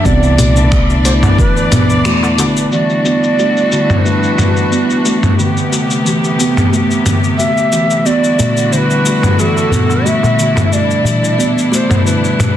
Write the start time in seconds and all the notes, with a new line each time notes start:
Already playing: D4
0.05 C2 E3 B3 D5, kick, cabasa
0.23 cabasa
0.38 A3, closed hi-hat, darbuka dum, cabasa
0.56 darbuka ka, cabasa
0.72 D3, finger snap, kick, cabasa
0.90 cabasa
1.05 A3 C5, closed hi-hat, darbuka ka, darbuka tek, cabasa
1.23 mid tom, darbuka ka, darbuka tek, cabasa
1.38 G1 E3 B4, kick, cabasa
1.57 cabasa
1.72 B3, closed hi-hat, mid tom, darbuka dum, cabasa
1.89 C2, cabasa
2.05 E2 A3, finger snap, cabasa
2.23 darbuka tek, cabasa
2.38 D3, closed hi-hat, darbuka tek, cabasa
2.56 G1, cabasa
2.72 E3 G3 D4 F#4 D5, cabasa
2.90 cabasa
3.05 B3, cabasa
3.24 cabasa
3.39 A3, cabasa
3.57 cabasa
3.72 D3, cabasa
3.90 mid tom, cabasa
4.05 A3 B4, cabasa
4.23 cabasa
4.38 E3, mid tom, cabasa
4.57 cabasa
4.72 B3, cabasa
4.90 cabasa
5.05 A3, cabasa
5.23 mid tom, cabasa
5.39 C3 D3 A3 B3 G4, cabasa
5.57 cabasa
5.72 A3, cabasa
5.90 cabasa
6.05 E3, cabasa
6.24 cabasa
6.39 B3, cabasa
6.57 mid tom, cabasa
6.72 A3, cabasa
6.91 cabasa
7.06 D3, mid tom, cabasa
7.24 cabasa
7.38 A3 E5, cabasa
7.57 cabasa
7.73 E3, cabasa
7.90 cabasa
8.05 D3 G3 B3 E4 F#4 D5, cabasa
8.24 cabasa
8.39 A3, darbuka dum, cabasa
8.56 darbuka ka, cabasa
8.72 D3 C5, cabasa
8.77 B4
8.90 cabasa
9.05 A3, darbuka ka, cabasa
9.23 mid tom, darbuka ka, darbuka tek, cabasa
9.39 E3 A4, cabasa
9.57 darbuka ka, cabasa
9.71 B3, mid tom, darbuka dum, cabasa
9.89 darbuka tek, cabasa
10.06 A3 E5, cabasa
10.23 darbuka tek, darbuka dum, cabasa
10.39 D3, cabasa
10.56 mid tom, darbuka tek, cabasa
10.65 E5
10.72 B2 G3 A3 D4 D5, cabasa
10.91 cabasa
11.05 E3, darbuka dum, cabasa
11.23 darbuka ka, cabasa
11.38 B3, cabasa
11.58 cabasa
11.72 A3 C5, darbuka ka, darbuka tek, cabasa
11.90 mid tom, darbuka ka, darbuka tek, cabasa
12.05 D3 B4, cabasa
12.25 cabasa
12.39 A3, mid tom, darbuka dum, cabasa